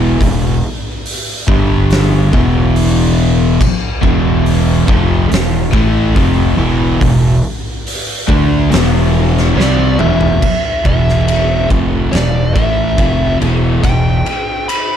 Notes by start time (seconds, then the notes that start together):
Already playing: E1 E2 B2 E3
0.21 E1 E2 B2, kick, open hi-hat
1.06 open hi-hat
1.48 G1 G2 D3 G3, kick
1.90 snare, open hi-hat
2.32 E1 E2 B2 E3, kick
2.76 open hi-hat
3.61 kick, crash
4.02 E1 E2 B2 E3, kick
4.46 open hi-hat
4.88 F1 F2 C3 F3, kick
5.30 E1 E2 B2, snare, open hi-hat
5.72 A1 A2 E3 A3, kick
6.15 F1 F2 C3 F3, kick, open hi-hat
6.57 E1 E2 B2 E3
7.01 E1 E2 B2, kick, open hi-hat
7.87 open hi-hat
8.28 D2 D3 A3 D4, kick
8.70 E1 E2 B2 E3, snare, open hi-hat
9.38 snare
9.56 C2 C3 G3 C4 D5, snare
9.99 E1 E2 B2 E3 E5, mid tom
10.21 floor tom
10.42 kick, crash
10.85 E1 E2 B2 E3 E5, kick, ride
11.09 snare
11.28 ride
11.70 F1 F2 C3 F3, kick, ride
12.12 E1 E2 B2 D5, snare, ride
12.54 A1 A2 E3 A3 E5, kick, ride
12.98 F1 F2 C3 F3, kick, ride
13.41 E1 E2 B2 E3, ride
13.83 E1 E2 B2 G5, kick, ride
14.26 ride
14.68 B5, ride